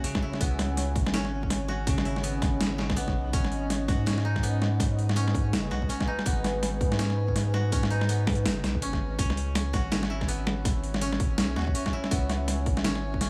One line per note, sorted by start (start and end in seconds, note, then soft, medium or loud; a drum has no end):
0.00 1.86 C#3 loud
0.00 0.40 B3 medium
0.00 1.13 C#4 loud
0.00 4.43 C#4 loud
0.00 0.22 E4 medium
0.00 1.68 F#4 medium
0.00 4.67 C#5 medium
0.00 0.83 E5 medium
0.00 4.54 G#5 medium
0.04 closed hi-hat medium
0.15 kick medium
0.15 snare medium
0.22 2.05 E4 medium
0.33 snare medium
0.41 0.97 C#2 loud
0.41 2.23 B3 medium
0.41 kick loud
0.41 closed hi-hat medium
0.59 snare medium
0.59 closed hi-hat soft
0.72 9.19 D#5 medium
0.77 snare medium
0.77 closed hi-hat medium
0.96 2.41 G#1 medium
0.96 kick loud
0.96 closed hi-hat soft
1.07 snare medium
1.14 3.33 C#4 loud
1.14 snare loud
1.14 closed hi-hat medium
1.25 snare medium
1.43 kick medium
1.50 snare medium
1.50 closed hi-hat medium
1.68 3.80 F#4 medium
1.68 snare soft
1.87 2.77 C#3 loud
1.87 kick loud
1.87 closed hi-hat medium
1.98 snare medium
2.05 4.31 E4 medium
2.05 closed hi-hat soft
2.16 snare medium
2.23 2.96 B3 medium
2.23 closed hi-hat medium
2.42 2.59 G#1 medium
2.42 kick loud
2.42 snare medium
2.42 closed hi-hat soft
2.60 3.17 G#1 loud
2.60 snare loud
2.60 snare medium
2.60 closed hi-hat medium
2.78 3.38 C#3 medium
2.78 snare medium
2.89 kick medium
2.89 snare medium
2.96 4.43 B3 loud
2.96 closed hi-hat medium
3.08 kick medium
3.08 snare soft
3.15 3.32 B1 loud
3.33 3.90 G#1 loud
3.33 9.19 G#3 medium
3.33 4.06 C#4 loud
3.33 kick loud
3.33 closed hi-hat medium
3.45 snare soft
3.52 closed hi-hat soft
3.70 snare medium
3.70 closed hi-hat medium
3.82 10.47 G#4 medium
3.88 5.34 G#2 medium
3.88 5.70 F#4 medium
3.88 kick loud
3.88 snare soft
3.88 closed hi-hat soft
4.06 5.16 C#4 medium
4.06 snare loud
4.06 closed hi-hat medium
4.18 snare medium
4.25 6.07 D#4 medium
4.36 kick medium
4.36 snare soft
4.41 6.25 B3 medium
4.41 10.19 B4 medium
4.41 closed hi-hat medium
4.62 snare medium
4.80 kick loud
4.80 snare medium
4.80 closed hi-hat medium
4.99 closed hi-hat soft
5.09 snare medium
5.16 5.89 C#4 loud
5.16 closed hi-hat medium
5.28 snare medium
5.35 5.55 G#2 medium
5.35 kick loud
5.35 closed hi-hat soft
5.53 5.70 F#1 medium
5.53 snare loud
5.53 snare medium
5.53 closed hi-hat medium
5.71 5.88 B1 loud
5.71 7.53 F#4 medium
5.71 snare medium
5.82 kick medium
5.89 6.98 C#4 medium
5.89 closed hi-hat medium
6.00 kick medium
6.00 snare medium
6.07 7.90 D#4 medium
6.19 snare medium
6.26 6.82 G#1 loud
6.26 8.09 B3 medium
6.26 kick loud
6.26 closed hi-hat medium
6.44 snare medium
6.44 closed hi-hat soft
6.63 snare medium
6.63 closed hi-hat medium
6.81 8.26 G#2 medium
6.81 kick loud
6.81 closed hi-hat soft
6.92 snare medium
6.99 7.72 C#4 loud
6.99 snare loud
6.99 closed hi-hat medium
7.10 snare medium
7.28 kick medium
7.36 snare medium
7.36 closed hi-hat medium
7.54 9.65 F#4 medium
7.54 snare medium
7.72 8.82 C#4 medium
7.72 kick loud
7.72 closed hi-hat medium
7.83 snare medium
7.90 10.16 D#4 medium
7.90 closed hi-hat soft
8.01 snare medium
8.09 10.28 B3 medium
8.09 closed hi-hat medium
8.27 8.47 G#2 medium
8.27 kick loud
8.27 snare medium
8.27 closed hi-hat soft
8.30 closed hi-hat soft
8.32 closed hi-hat soft
8.35 closed hi-hat soft
8.45 8.63 F#1 medium
8.45 snare loud
8.45 snare medium
8.45 closed hi-hat medium
8.64 8.83 B1 loud
8.64 snare medium
8.64 closed hi-hat soft
8.75 kick medium
8.82 9.02 F#1 medium
8.82 9.18 C#4 loud
8.82 closed hi-hat medium
8.93 kick medium
8.93 snare medium
9.00 9.17 G#1 medium
9.19 9.75 C#2 loud
9.19 9.55 C#4 loud
9.19 13.30 C#4 medium
9.19 kick loud
9.19 closed hi-hat medium
9.30 snare medium
9.37 closed hi-hat soft
9.53 9.91 C#4 medium
9.53 13.30 C#5 medium
9.53 snare medium
9.53 closed hi-hat medium
9.73 11.19 G#1 medium
9.73 11.56 F#4 medium
9.73 kick loud
9.73 snare medium
9.73 closed hi-hat soft
9.87 13.30 E5 loud
9.92 11.01 C#4 medium
9.92 13.17 G#5 medium
9.92 snare loud
9.92 closed hi-hat medium
10.03 snare medium
10.10 11.92 E4 medium
10.21 kick medium
10.21 snare medium
10.28 12.11 B3 medium
10.28 closed hi-hat medium
10.47 snare medium
10.65 kick loud
10.65 snare medium
10.65 closed hi-hat medium
10.84 closed hi-hat soft
10.94 snare medium
11.01 11.38 C#4 loud
11.01 closed hi-hat medium
11.12 snare medium
11.20 11.40 G#1 medium
11.20 kick loud
11.20 closed hi-hat soft
11.38 11.55 B1 medium
11.38 11.74 C#4 medium
11.38 snare loud
11.38 snare medium
11.38 closed hi-hat medium
11.56 11.74 D#2 loud
11.56 13.30 F#4 medium
11.56 snare medium
11.59 snare soft
11.62 snare soft
11.65 kick medium
11.65 snare soft
11.75 12.84 C#4 medium
11.75 closed hi-hat medium
11.86 kick medium
11.86 snare medium
11.93 13.30 E4 medium
12.04 snare medium
12.11 12.68 C#2 loud
12.11 13.30 B3 medium
12.11 kick loud
12.11 closed hi-hat medium
12.30 snare medium
12.30 closed hi-hat soft
12.48 snare medium
12.48 closed hi-hat medium
12.66 13.30 G#1 medium
12.66 kick loud
12.66 closed hi-hat soft
12.77 snare medium
12.84 13.21 C#4 loud
12.84 snare loud
12.84 closed hi-hat medium
12.95 snare medium
13.14 kick medium
13.21 13.30 C#4 medium
13.21 snare medium
13.21 closed hi-hat medium